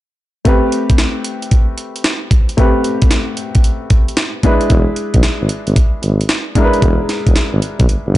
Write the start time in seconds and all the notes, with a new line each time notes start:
0.45 A3 C4 G4 B4, kick, closed hi-hat
0.72 closed hi-hat
0.90 kick, closed hi-hat
0.98 snare, closed hi-hat
1.24 closed hi-hat
1.42 closed hi-hat
1.51 kick, closed hi-hat
1.78 closed hi-hat
1.96 closed hi-hat
2.04 snare, closed hi-hat
2.31 kick, closed hi-hat
2.49 closed hi-hat
2.57 A3 C4 G4 B4, kick, closed hi-hat
2.84 closed hi-hat
3.02 kick, closed hi-hat
3.11 snare, closed hi-hat
3.37 closed hi-hat
3.55 kick, closed hi-hat
3.64 closed hi-hat
3.90 kick, closed hi-hat
4.08 closed hi-hat
4.17 snare, closed hi-hat
4.43 G#3 D4 E4 B4, kick, closed hi-hat
4.61 closed hi-hat
4.70 E1, kick, closed hi-hat
4.96 closed hi-hat
5.14 B1, kick, closed hi-hat
5.23 snare, closed hi-hat
5.41 G#1
5.49 closed hi-hat
5.67 G#1, closed hi-hat
5.76 kick, closed hi-hat
6.03 G#1, closed hi-hat
6.21 closed hi-hat
6.29 snare, closed hi-hat
6.55 G#3 D4 E4 A#4, kick, closed hi-hat
6.64 B4
6.74 closed hi-hat
6.82 E1, kick, closed hi-hat
7.09 snare, closed hi-hat
7.26 E1, kick, closed hi-hat
7.36 snare, closed hi-hat
7.53 G#1
7.62 closed hi-hat
7.80 B1, kick, closed hi-hat
7.89 G1, closed hi-hat
8.06 G1